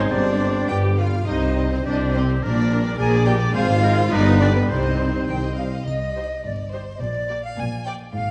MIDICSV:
0, 0, Header, 1, 13, 480
1, 0, Start_track
1, 0, Key_signature, -3, "minor"
1, 0, Tempo, 582524
1, 87, Time_signature, 2, 2, 24, 8
1, 1526, Tempo, 564972
1, 3446, Tempo, 585938
1, 4886, Tempo, 568182
1, 6946, End_track
2, 0, Start_track
2, 0, Title_t, "Flute"
2, 0, Program_c, 0, 73
2, 0, Note_on_c, 0, 73, 77
2, 86, Note_off_c, 0, 73, 0
2, 91, Note_on_c, 0, 74, 83
2, 566, Note_on_c, 0, 79, 72
2, 578, Note_off_c, 0, 74, 0
2, 809, Note_on_c, 0, 77, 64
2, 821, Note_off_c, 0, 79, 0
2, 1047, Note_off_c, 0, 77, 0
2, 1052, Note_on_c, 0, 75, 80
2, 1402, Note_off_c, 0, 75, 0
2, 1406, Note_on_c, 0, 72, 70
2, 1456, Note_off_c, 0, 72, 0
2, 1532, Note_on_c, 0, 74, 65
2, 1769, Note_off_c, 0, 74, 0
2, 1778, Note_on_c, 0, 72, 74
2, 1831, Note_off_c, 0, 72, 0
2, 2023, Note_on_c, 0, 74, 82
2, 2323, Note_off_c, 0, 74, 0
2, 2495, Note_on_c, 0, 80, 96
2, 2713, Note_off_c, 0, 80, 0
2, 2732, Note_on_c, 0, 79, 79
2, 2785, Note_off_c, 0, 79, 0
2, 2970, Note_on_c, 0, 77, 101
2, 3448, Note_on_c, 0, 75, 96
2, 3461, Note_off_c, 0, 77, 0
2, 3683, Note_off_c, 0, 75, 0
2, 3692, Note_on_c, 0, 74, 81
2, 3741, Note_off_c, 0, 74, 0
2, 3810, Note_on_c, 0, 71, 69
2, 3859, Note_off_c, 0, 71, 0
2, 3926, Note_on_c, 0, 72, 74
2, 4398, Note_off_c, 0, 72, 0
2, 4414, Note_on_c, 0, 79, 62
2, 4468, Note_off_c, 0, 79, 0
2, 4655, Note_on_c, 0, 77, 62
2, 4708, Note_off_c, 0, 77, 0
2, 4899, Note_on_c, 0, 75, 71
2, 5368, Note_off_c, 0, 75, 0
2, 5383, Note_on_c, 0, 74, 60
2, 5436, Note_off_c, 0, 74, 0
2, 5617, Note_on_c, 0, 72, 66
2, 5668, Note_off_c, 0, 72, 0
2, 5801, Note_on_c, 0, 75, 56
2, 5851, Note_off_c, 0, 75, 0
2, 5856, Note_on_c, 0, 74, 78
2, 6212, Note_off_c, 0, 74, 0
2, 6219, Note_on_c, 0, 77, 62
2, 6270, Note_off_c, 0, 77, 0
2, 6332, Note_on_c, 0, 80, 84
2, 6386, Note_off_c, 0, 80, 0
2, 6571, Note_on_c, 0, 79, 73
2, 6624, Note_off_c, 0, 79, 0
2, 6805, Note_on_c, 0, 77, 97
2, 6946, Note_off_c, 0, 77, 0
2, 6946, End_track
3, 0, Start_track
3, 0, Title_t, "Violin section"
3, 0, Program_c, 1, 48
3, 80, Note_on_c, 1, 74, 75
3, 555, Note_off_c, 1, 74, 0
3, 565, Note_on_c, 1, 79, 64
3, 631, Note_off_c, 1, 79, 0
3, 809, Note_on_c, 1, 77, 76
3, 1045, Note_off_c, 1, 77, 0
3, 1049, Note_on_c, 1, 75, 69
3, 1407, Note_off_c, 1, 75, 0
3, 1412, Note_on_c, 1, 72, 71
3, 1526, Note_on_c, 1, 74, 66
3, 1527, Note_off_c, 1, 72, 0
3, 1594, Note_off_c, 1, 74, 0
3, 1767, Note_on_c, 1, 72, 70
3, 1835, Note_off_c, 1, 72, 0
3, 2018, Note_on_c, 1, 74, 68
3, 2483, Note_off_c, 1, 74, 0
3, 2485, Note_on_c, 1, 80, 81
3, 2553, Note_off_c, 1, 80, 0
3, 2725, Note_on_c, 1, 79, 79
3, 2793, Note_off_c, 1, 79, 0
3, 2960, Note_on_c, 1, 77, 94
3, 3434, Note_off_c, 1, 77, 0
3, 3446, Note_on_c, 1, 75, 95
3, 3682, Note_off_c, 1, 75, 0
3, 3685, Note_on_c, 1, 74, 84
3, 3798, Note_on_c, 1, 71, 75
3, 3800, Note_off_c, 1, 74, 0
3, 3919, Note_on_c, 1, 72, 64
3, 3920, Note_off_c, 1, 71, 0
3, 4395, Note_off_c, 1, 72, 0
3, 4404, Note_on_c, 1, 79, 55
3, 4629, Note_off_c, 1, 79, 0
3, 4645, Note_on_c, 1, 77, 50
3, 4880, Note_off_c, 1, 77, 0
3, 4886, Note_on_c, 1, 75, 57
3, 5368, Note_on_c, 1, 74, 54
3, 5371, Note_off_c, 1, 75, 0
3, 5605, Note_on_c, 1, 72, 60
3, 5606, Note_off_c, 1, 74, 0
3, 5847, Note_on_c, 1, 74, 58
3, 5849, Note_off_c, 1, 72, 0
3, 6208, Note_off_c, 1, 74, 0
3, 6211, Note_on_c, 1, 77, 64
3, 6328, Note_off_c, 1, 77, 0
3, 6330, Note_on_c, 1, 80, 69
3, 6567, Note_on_c, 1, 79, 63
3, 6568, Note_off_c, 1, 80, 0
3, 6635, Note_off_c, 1, 79, 0
3, 6803, Note_on_c, 1, 77, 73
3, 6946, Note_off_c, 1, 77, 0
3, 6946, End_track
4, 0, Start_track
4, 0, Title_t, "Clarinet"
4, 0, Program_c, 2, 71
4, 0, Note_on_c, 2, 72, 108
4, 569, Note_on_c, 2, 71, 77
4, 581, Note_off_c, 2, 72, 0
4, 810, Note_off_c, 2, 71, 0
4, 1281, Note_on_c, 2, 72, 48
4, 1369, Note_off_c, 2, 72, 0
4, 1768, Note_on_c, 2, 72, 53
4, 1856, Note_off_c, 2, 72, 0
4, 2252, Note_on_c, 2, 74, 64
4, 2338, Note_off_c, 2, 74, 0
4, 2730, Note_on_c, 2, 74, 75
4, 2815, Note_off_c, 2, 74, 0
4, 3213, Note_on_c, 2, 72, 72
4, 3298, Note_off_c, 2, 72, 0
4, 3687, Note_on_c, 2, 71, 71
4, 3772, Note_off_c, 2, 71, 0
4, 4172, Note_on_c, 2, 75, 50
4, 4257, Note_off_c, 2, 75, 0
4, 4653, Note_on_c, 2, 75, 42
4, 4738, Note_off_c, 2, 75, 0
4, 6946, End_track
5, 0, Start_track
5, 0, Title_t, "Oboe"
5, 0, Program_c, 3, 68
5, 0, Note_on_c, 3, 72, 90
5, 92, Note_on_c, 3, 74, 72
5, 104, Note_off_c, 3, 72, 0
5, 812, Note_off_c, 3, 74, 0
5, 1048, Note_on_c, 3, 72, 71
5, 1493, Note_off_c, 3, 72, 0
5, 1528, Note_on_c, 3, 67, 74
5, 2015, Note_on_c, 3, 70, 76
5, 2028, Note_off_c, 3, 67, 0
5, 2485, Note_off_c, 3, 70, 0
5, 2490, Note_on_c, 3, 74, 96
5, 2956, Note_off_c, 3, 74, 0
5, 2970, Note_on_c, 3, 72, 90
5, 3077, Note_off_c, 3, 72, 0
5, 3208, Note_on_c, 3, 70, 97
5, 3316, Note_off_c, 3, 70, 0
5, 3448, Note_on_c, 3, 71, 96
5, 3913, Note_off_c, 3, 71, 0
5, 3921, Note_on_c, 3, 72, 66
5, 4632, Note_off_c, 3, 72, 0
5, 6946, End_track
6, 0, Start_track
6, 0, Title_t, "Violin section"
6, 0, Program_c, 4, 48
6, 323, Note_on_c, 4, 72, 46
6, 389, Note_off_c, 4, 72, 0
6, 803, Note_on_c, 4, 71, 54
6, 869, Note_off_c, 4, 71, 0
6, 1054, Note_on_c, 4, 75, 63
6, 1163, Note_off_c, 4, 75, 0
6, 1164, Note_on_c, 4, 72, 56
6, 1286, Note_off_c, 4, 72, 0
6, 1290, Note_on_c, 4, 75, 50
6, 1408, Note_off_c, 4, 75, 0
6, 1410, Note_on_c, 4, 72, 55
6, 1528, Note_off_c, 4, 72, 0
6, 1530, Note_on_c, 4, 75, 60
6, 1642, Note_off_c, 4, 75, 0
6, 1653, Note_on_c, 4, 72, 54
6, 1773, Note_off_c, 4, 72, 0
6, 1773, Note_on_c, 4, 75, 59
6, 1894, Note_off_c, 4, 75, 0
6, 1896, Note_on_c, 4, 72, 50
6, 2012, Note_on_c, 4, 70, 66
6, 2015, Note_off_c, 4, 72, 0
6, 2124, Note_off_c, 4, 70, 0
6, 2136, Note_on_c, 4, 74, 62
6, 2254, Note_off_c, 4, 74, 0
6, 2261, Note_on_c, 4, 70, 62
6, 2370, Note_on_c, 4, 74, 59
6, 2376, Note_off_c, 4, 70, 0
6, 2489, Note_off_c, 4, 74, 0
6, 2491, Note_on_c, 4, 70, 76
6, 2601, Note_off_c, 4, 70, 0
6, 2620, Note_on_c, 4, 74, 66
6, 2728, Note_on_c, 4, 70, 67
6, 2733, Note_off_c, 4, 74, 0
6, 2847, Note_off_c, 4, 70, 0
6, 2848, Note_on_c, 4, 74, 69
6, 2963, Note_on_c, 4, 68, 84
6, 2966, Note_off_c, 4, 74, 0
6, 3075, Note_off_c, 4, 68, 0
6, 3086, Note_on_c, 4, 72, 74
6, 3205, Note_off_c, 4, 72, 0
6, 3209, Note_on_c, 4, 68, 76
6, 3324, Note_on_c, 4, 72, 73
6, 3328, Note_off_c, 4, 68, 0
6, 3446, Note_off_c, 4, 72, 0
6, 3454, Note_on_c, 4, 74, 83
6, 3560, Note_off_c, 4, 74, 0
6, 3573, Note_on_c, 4, 71, 74
6, 3687, Note_off_c, 4, 71, 0
6, 3688, Note_on_c, 4, 74, 64
6, 3803, Note_on_c, 4, 71, 56
6, 3804, Note_off_c, 4, 74, 0
6, 3920, Note_on_c, 4, 72, 59
6, 3922, Note_off_c, 4, 71, 0
6, 4033, Note_off_c, 4, 72, 0
6, 4043, Note_on_c, 4, 75, 54
6, 4164, Note_off_c, 4, 75, 0
6, 4165, Note_on_c, 4, 72, 51
6, 4285, Note_off_c, 4, 72, 0
6, 4289, Note_on_c, 4, 75, 47
6, 4408, Note_off_c, 4, 75, 0
6, 4409, Note_on_c, 4, 72, 52
6, 4520, Note_off_c, 4, 72, 0
6, 4530, Note_on_c, 4, 75, 43
6, 4649, Note_off_c, 4, 75, 0
6, 4652, Note_on_c, 4, 72, 41
6, 4766, Note_on_c, 4, 75, 39
6, 4770, Note_off_c, 4, 72, 0
6, 4885, Note_off_c, 4, 75, 0
6, 5133, Note_on_c, 4, 72, 42
6, 5200, Note_off_c, 4, 72, 0
6, 5615, Note_on_c, 4, 72, 46
6, 5682, Note_off_c, 4, 72, 0
6, 6096, Note_on_c, 4, 74, 45
6, 6163, Note_off_c, 4, 74, 0
6, 6565, Note_on_c, 4, 74, 56
6, 6633, Note_off_c, 4, 74, 0
6, 6946, End_track
7, 0, Start_track
7, 0, Title_t, "Viola section"
7, 0, Program_c, 5, 48
7, 89, Note_on_c, 5, 62, 94
7, 559, Note_off_c, 5, 62, 0
7, 570, Note_on_c, 5, 67, 92
7, 809, Note_on_c, 5, 65, 80
7, 811, Note_off_c, 5, 67, 0
7, 1050, Note_off_c, 5, 65, 0
7, 1054, Note_on_c, 5, 63, 84
7, 1402, Note_off_c, 5, 63, 0
7, 1411, Note_on_c, 5, 60, 66
7, 1458, Note_off_c, 5, 60, 0
7, 1526, Note_on_c, 5, 62, 95
7, 1766, Note_off_c, 5, 62, 0
7, 1768, Note_on_c, 5, 60, 81
7, 2011, Note_off_c, 5, 60, 0
7, 2011, Note_on_c, 5, 62, 92
7, 2479, Note_off_c, 5, 62, 0
7, 2491, Note_on_c, 5, 68, 106
7, 2723, Note_off_c, 5, 68, 0
7, 2727, Note_on_c, 5, 67, 95
7, 2965, Note_off_c, 5, 67, 0
7, 2970, Note_on_c, 5, 65, 106
7, 3440, Note_off_c, 5, 65, 0
7, 3450, Note_on_c, 5, 63, 120
7, 3684, Note_off_c, 5, 63, 0
7, 3689, Note_on_c, 5, 62, 92
7, 3735, Note_off_c, 5, 62, 0
7, 3810, Note_on_c, 5, 59, 77
7, 3856, Note_off_c, 5, 59, 0
7, 3923, Note_on_c, 5, 60, 74
7, 4633, Note_off_c, 5, 60, 0
7, 5131, Note_on_c, 5, 63, 45
7, 5133, Note_on_c, 5, 67, 47
7, 5199, Note_off_c, 5, 63, 0
7, 5200, Note_off_c, 5, 67, 0
7, 5618, Note_on_c, 5, 63, 43
7, 5618, Note_on_c, 5, 67, 41
7, 5685, Note_off_c, 5, 67, 0
7, 5686, Note_off_c, 5, 63, 0
7, 6094, Note_on_c, 5, 67, 49
7, 6095, Note_on_c, 5, 58, 52
7, 6161, Note_off_c, 5, 67, 0
7, 6163, Note_off_c, 5, 58, 0
7, 6567, Note_on_c, 5, 58, 45
7, 6571, Note_on_c, 5, 67, 49
7, 6635, Note_off_c, 5, 58, 0
7, 6639, Note_off_c, 5, 67, 0
7, 6946, End_track
8, 0, Start_track
8, 0, Title_t, "French horn section"
8, 0, Program_c, 6, 60
8, 0, Note_on_c, 6, 60, 93
8, 85, Note_on_c, 6, 55, 77
8, 541, Note_off_c, 6, 60, 0
8, 568, Note_on_c, 6, 59, 67
8, 810, Note_off_c, 6, 59, 0
8, 1058, Note_on_c, 6, 60, 67
8, 1983, Note_off_c, 6, 60, 0
8, 2007, Note_off_c, 6, 55, 0
8, 2013, Note_on_c, 6, 62, 66
8, 2017, Note_on_c, 6, 55, 71
8, 2949, Note_off_c, 6, 55, 0
8, 2966, Note_off_c, 6, 62, 0
8, 2967, Note_on_c, 6, 60, 76
8, 2968, Note_on_c, 6, 56, 82
8, 3438, Note_off_c, 6, 60, 0
8, 3448, Note_off_c, 6, 56, 0
8, 3450, Note_on_c, 6, 59, 81
8, 3451, Note_on_c, 6, 55, 91
8, 3924, Note_off_c, 6, 59, 0
8, 3927, Note_on_c, 6, 63, 65
8, 4649, Note_off_c, 6, 55, 0
8, 4650, Note_off_c, 6, 63, 0
8, 6946, End_track
9, 0, Start_track
9, 0, Title_t, "Bassoon"
9, 0, Program_c, 7, 70
9, 0, Note_on_c, 7, 56, 100
9, 88, Note_on_c, 7, 55, 76
9, 100, Note_off_c, 7, 56, 0
9, 810, Note_off_c, 7, 55, 0
9, 1285, Note_on_c, 7, 55, 56
9, 1372, Note_off_c, 7, 55, 0
9, 1775, Note_on_c, 7, 55, 64
9, 1861, Note_off_c, 7, 55, 0
9, 2258, Note_on_c, 7, 55, 57
9, 2342, Note_off_c, 7, 55, 0
9, 2727, Note_on_c, 7, 55, 75
9, 2812, Note_off_c, 7, 55, 0
9, 3206, Note_on_c, 7, 56, 71
9, 3293, Note_off_c, 7, 56, 0
9, 3687, Note_on_c, 7, 55, 64
9, 3772, Note_off_c, 7, 55, 0
9, 4170, Note_on_c, 7, 55, 47
9, 4255, Note_off_c, 7, 55, 0
9, 4653, Note_on_c, 7, 55, 45
9, 4738, Note_off_c, 7, 55, 0
9, 6946, End_track
10, 0, Start_track
10, 0, Title_t, "Cello section"
10, 0, Program_c, 8, 48
10, 85, Note_on_c, 8, 43, 73
10, 486, Note_off_c, 8, 43, 0
10, 568, Note_on_c, 8, 43, 73
10, 970, Note_off_c, 8, 43, 0
10, 1052, Note_on_c, 8, 48, 73
10, 1471, Note_off_c, 8, 48, 0
10, 1531, Note_on_c, 8, 48, 72
10, 1958, Note_off_c, 8, 48, 0
10, 2015, Note_on_c, 8, 46, 75
10, 2435, Note_off_c, 8, 46, 0
10, 2493, Note_on_c, 8, 46, 85
10, 2911, Note_off_c, 8, 46, 0
10, 2965, Note_on_c, 8, 44, 92
10, 3389, Note_off_c, 8, 44, 0
10, 3447, Note_on_c, 8, 43, 98
10, 3865, Note_off_c, 8, 43, 0
10, 3920, Note_on_c, 8, 48, 70
10, 4348, Note_off_c, 8, 48, 0
10, 4409, Note_on_c, 8, 51, 58
10, 4475, Note_off_c, 8, 51, 0
10, 4649, Note_on_c, 8, 48, 52
10, 4714, Note_off_c, 8, 48, 0
10, 4887, Note_on_c, 8, 48, 59
10, 5270, Note_off_c, 8, 48, 0
10, 5372, Note_on_c, 8, 43, 59
10, 5752, Note_off_c, 8, 43, 0
10, 5854, Note_on_c, 8, 46, 61
10, 6231, Note_off_c, 8, 46, 0
10, 6331, Note_on_c, 8, 46, 66
10, 6707, Note_off_c, 8, 46, 0
10, 6809, Note_on_c, 8, 44, 83
10, 6946, Note_off_c, 8, 44, 0
10, 6946, End_track
11, 0, Start_track
11, 0, Title_t, "Double bass section"
11, 0, Program_c, 10, 48
11, 88, Note_on_c, 10, 31, 71
11, 488, Note_off_c, 10, 31, 0
11, 572, Note_on_c, 10, 31, 68
11, 972, Note_off_c, 10, 31, 0
11, 1052, Note_on_c, 10, 36, 72
11, 1472, Note_off_c, 10, 36, 0
11, 1532, Note_on_c, 10, 36, 73
11, 1959, Note_off_c, 10, 36, 0
11, 2021, Note_on_c, 10, 34, 79
11, 2438, Note_off_c, 10, 34, 0
11, 2495, Note_on_c, 10, 34, 82
11, 2912, Note_off_c, 10, 34, 0
11, 2972, Note_on_c, 10, 32, 86
11, 3393, Note_off_c, 10, 32, 0
11, 3454, Note_on_c, 10, 31, 91
11, 3869, Note_off_c, 10, 31, 0
11, 3932, Note_on_c, 10, 36, 73
11, 4354, Note_off_c, 10, 36, 0
11, 4414, Note_on_c, 10, 36, 63
11, 4834, Note_off_c, 10, 36, 0
11, 4891, Note_on_c, 10, 36, 64
11, 5272, Note_off_c, 10, 36, 0
11, 5376, Note_on_c, 10, 31, 61
11, 5755, Note_off_c, 10, 31, 0
11, 5858, Note_on_c, 10, 34, 64
11, 6233, Note_off_c, 10, 34, 0
11, 6334, Note_on_c, 10, 34, 70
11, 6708, Note_off_c, 10, 34, 0
11, 6807, Note_on_c, 10, 32, 74
11, 6946, Note_off_c, 10, 32, 0
11, 6946, End_track
12, 0, Start_track
12, 0, Title_t, "Tuba"
12, 0, Program_c, 11, 58
12, 88, Note_on_c, 11, 31, 76
12, 488, Note_off_c, 11, 31, 0
12, 571, Note_on_c, 11, 31, 64
12, 972, Note_off_c, 11, 31, 0
12, 1055, Note_on_c, 11, 36, 62
12, 1473, Note_off_c, 11, 36, 0
12, 1526, Note_on_c, 11, 36, 72
12, 1956, Note_off_c, 11, 36, 0
12, 2013, Note_on_c, 11, 34, 65
12, 2434, Note_off_c, 11, 34, 0
12, 2489, Note_on_c, 11, 34, 80
12, 2909, Note_off_c, 11, 34, 0
12, 2968, Note_on_c, 11, 32, 93
12, 3391, Note_off_c, 11, 32, 0
12, 3451, Note_on_c, 11, 31, 99
12, 3867, Note_off_c, 11, 31, 0
12, 3925, Note_on_c, 11, 36, 70
12, 4351, Note_off_c, 11, 36, 0
12, 4410, Note_on_c, 11, 36, 59
12, 4832, Note_off_c, 11, 36, 0
12, 6946, End_track
13, 0, Start_track
13, 0, Title_t, "Drums"
13, 4891, Note_on_c, 9, 81, 40
13, 4975, Note_off_c, 9, 81, 0
13, 6946, End_track
0, 0, End_of_file